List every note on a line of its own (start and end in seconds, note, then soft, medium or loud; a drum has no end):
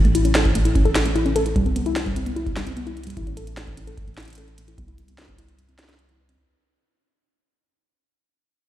0.00 1.54 A1 medium
0.05 0.11 A3 medium
0.05 closed hi-hat soft
0.15 0.24 E4 medium
0.15 closed hi-hat medium
0.25 0.34 C#4 medium
0.25 closed hi-hat soft
0.35 0.41 A4 loud
0.35 snare loud
0.35 closed hi-hat soft
0.45 kick loud
0.45 closed hi-hat soft
0.55 0.61 A3 medium
0.55 closed hi-hat medium
0.65 0.74 E4 medium
0.65 closed hi-hat soft
0.75 0.84 C#4 medium
0.75 kick loud
0.75 closed hi-hat soft
0.85 0.91 A4 loud
0.85 closed hi-hat soft
0.95 snare loud
0.95 closed hi-hat medium
1.05 1.11 A3 medium
1.05 closed hi-hat soft
1.16 1.24 E4 medium
1.16 closed hi-hat soft
1.26 1.34 C#4 medium
1.26 closed hi-hat soft
1.36 1.41 A4 loud
1.36 closed hi-hat medium
1.46 closed hi-hat soft
1.56 3.15 C2 medium
1.56 1.62 G3 medium
1.56 kick loud
1.56 closed hi-hat soft
1.66 1.75 C4 medium
1.66 closed hi-hat soft
1.76 1.85 B3 medium
1.76 closed hi-hat medium
1.86 1.92 E4 loud
1.86 closed hi-hat soft
1.96 snare loud
1.96 closed hi-hat soft
2.06 2.12 G3 medium
2.06 kick medium
2.06 closed hi-hat soft
2.16 2.25 C4 medium
2.16 closed hi-hat medium
2.26 2.35 B3 medium
2.26 closed hi-hat soft
2.36 2.42 E4 medium
2.36 closed hi-hat soft
2.46 kick loud
2.46 closed hi-hat soft
2.57 2.62 G3 medium
2.57 snare loud
2.67 2.75 C4 medium
2.67 closed hi-hat soft
2.77 2.85 B3 medium
2.77 closed hi-hat soft
2.87 2.92 E4 loud
2.87 closed hi-hat soft
2.97 closed hi-hat soft
3.04 3.13 G3 medium
3.04 closed hi-hat medium
3.07 closed hi-hat soft
3.10 closed hi-hat medium
3.17 4.76 A1 medium
3.17 3.25 E4 medium
3.17 kick loud
3.17 closed hi-hat medium
3.27 3.36 C#4 medium
3.27 closed hi-hat soft
3.37 3.43 A4 medium
3.37 closed hi-hat medium
3.47 closed hi-hat soft
3.57 3.63 A3 medium
3.57 snare loud
3.57 closed hi-hat soft
3.67 3.76 E4 medium
3.67 kick medium
3.67 closed hi-hat soft
3.77 3.86 C#4 medium
3.77 closed hi-hat medium
3.87 3.93 A4 loud
3.87 closed hi-hat soft
3.97 kick loud
3.97 closed hi-hat soft
4.08 4.13 A3 medium
4.08 closed hi-hat soft
4.14 4.26 E4 medium
4.14 snare loud
4.14 closed hi-hat soft
4.18 closed hi-hat soft
4.20 closed hi-hat soft
4.23 closed hi-hat soft
4.25 4.36 C#4 medium
4.25 closed hi-hat medium
4.28 closed hi-hat medium
4.30 closed hi-hat medium
4.33 closed hi-hat medium
4.35 4.43 A4 loud
4.35 closed hi-hat medium
4.38 closed hi-hat soft
4.48 closed hi-hat soft
4.58 4.64 A3 medium
4.58 closed hi-hat medium
4.68 4.77 E4 medium
4.68 closed hi-hat soft
4.78 6.37 C2 medium
4.78 4.87 B3 medium
4.78 kick loud
4.78 closed hi-hat soft
4.88 4.94 E4 loud
4.88 closed hi-hat soft
4.98 closed hi-hat medium
5.08 5.14 G3 medium
5.08 closed hi-hat soft
5.18 5.27 C4 medium
5.18 snare loud
5.18 closed hi-hat soft
5.22 snare medium
5.25 5.37 B3 medium
5.25 kick medium
5.25 snare medium
5.25 closed hi-hat soft
5.38 5.44 E4 loud
5.38 closed hi-hat medium
5.49 closed hi-hat soft
5.59 5.64 G3 medium
5.59 closed hi-hat medium
5.69 5.77 C4 medium
5.69 closed hi-hat soft
5.79 5.82 C4 medium
5.79 snare loud
5.79 closed hi-hat medium
5.84 snare medium
5.89 5.94 E4 medium
5.89 snare medium
5.89 closed hi-hat soft
5.94 snare medium
5.99 closed hi-hat soft
6.09 6.15 E4 loud
6.09 closed hi-hat soft
6.19 6.25 B4 medium
6.29 6.38 C4 medium
6.29 closed hi-hat medium